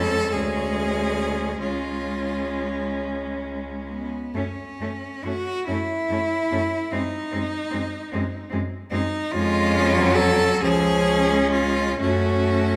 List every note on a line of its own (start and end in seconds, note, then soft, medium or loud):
0.00 0.36 F2 medium
0.00 0.30 G#3 medium
0.00 0.29 C#4 medium
0.00 0.34 A4 loud
0.33 1.62 D2 medium
0.33 1.59 G#3 medium
0.33 1.59 C#4 medium
0.33 1.61 G#4 loud
1.59 4.11 C#2 medium
1.59 4.10 G#3 medium
1.59 4.09 C#4 medium
1.59 2.97 F4 medium
3.90 4.37 B3 medium
4.35 4.43 F#2 medium
4.35 4.43 A3 medium
4.35 5.26 C#4 medium
4.35 4.45 C#4 medium
4.79 4.87 F#2 medium
4.79 4.89 A3 medium
4.79 4.90 C#4 medium
5.24 5.32 F#2 medium
5.24 5.33 A3 medium
5.24 5.33 C#4 medium
5.24 5.66 F#4 loud
5.67 5.76 F#2 medium
5.67 5.78 A3 medium
5.67 5.75 C#4 medium
5.67 6.96 E4 loud
6.09 6.17 F#2 medium
6.09 6.19 A3 medium
6.09 6.20 C#4 medium
6.52 6.60 F#2 medium
6.52 6.61 A3 medium
6.52 6.60 C#4 medium
6.91 7.00 F#2 medium
6.91 7.02 G#3 medium
6.91 6.99 C4 medium
6.91 8.54 D#4 loud
7.32 7.41 F#2 medium
7.32 7.42 G#3 medium
7.32 7.40 C4 medium
7.70 7.81 F#2 medium
7.70 7.81 G#3 medium
7.70 7.78 C4 medium
8.12 8.22 F#2 medium
8.12 8.22 G#3 medium
8.12 8.20 C4 medium
8.50 8.61 F#2 medium
8.50 8.60 G#3 medium
8.50 8.58 C4 medium
8.91 9.00 F#2 medium
8.91 9.01 G#3 medium
8.91 8.99 C4 medium
8.91 9.33 D#4 loud
9.32 10.57 F2 medium
9.32 9.99 G#3 medium
9.32 10.57 C#4 loud
9.32 10.17 F4 loud
9.97 10.64 F#3 loud
10.15 10.63 A4 loud
10.61 11.98 C#2 loud
10.61 11.32 F3 medium
10.61 11.99 C#4 loud
10.61 11.52 G#4 loud
11.30 12.02 G#3 medium
11.53 12.00 F4 loud
12.01 12.76 F#2 medium
12.01 12.76 A3 medium
12.01 12.76 C#4 medium
12.01 12.76 F#4 loud